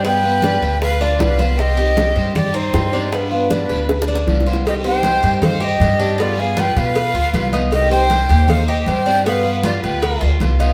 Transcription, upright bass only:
\new Staff \with { instrumentName = "Upright bass" } { \clef bass \time 4/4 \key g \phrygian \tempo 4 = 156 g,4. d,4. c,4~ | c,4. g,4. g,4~ | g,4. d,4. c,4~ | \key c \minor c,4. g,4. g,4~ |
g,4. b,4 d,8 c,4~ | c,4. ees,4. g,4~ | g,4. d,4 d,8 c,4 | }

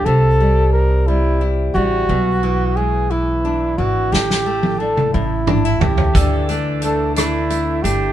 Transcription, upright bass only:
\new Staff \with { instrumentName = "Upright bass" } { \clef bass \time 6/8 \key c \mixolydian \tempo 4. = 59 c,2~ c,8 a,,8 | b,,2~ b,,8 gis,,8 | a,,4. a,,4 cis,8 | d,2~ d,8 g,,8 | }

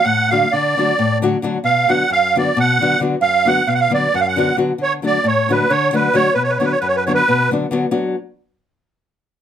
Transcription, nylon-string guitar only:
\new Staff \with { instrumentName = "Nylon-string guitar" } { \time 7/8 \key b \minor \tempo 4 = 134 << { r8 <d fis a d' fis'>8 r8 <d fis a d' fis'>8 r8 <d fis a d' fis'>8 <d fis a d' fis'>8 | r8 <d fis b d' fis'>8 r8 <d fis b d' fis'>8 r8 <d fis b d' fis'>8 <d fis b d' fis'>8 | r8 <d fis b d' fis'>8 r8 <d fis b d' fis'>8 r8 <d fis b d' fis'>8 <d fis b d' fis'>8 | r8 <d fis a d' fis'>8 r8 <d fis a d' fis'>8 r8 <d fis a d' fis'>8 <d fis a d' fis'>8 |
r8 <d fis b d' fis'>8 r8 <d fis b d' fis'>8 r8 <d fis b d' fis'>8 <d fis b d' fis'>8 | <fis b d' fis'>8 r2. | } \\ { a,4 d4 a,4 r8 | b,4 fis,4 b,4 r8 | fis,4 b,4 fis,4 r8 | d4 a,4 d4 r8 |
b,4 fis,4 b,4 r8 | r2. r8 | } >> }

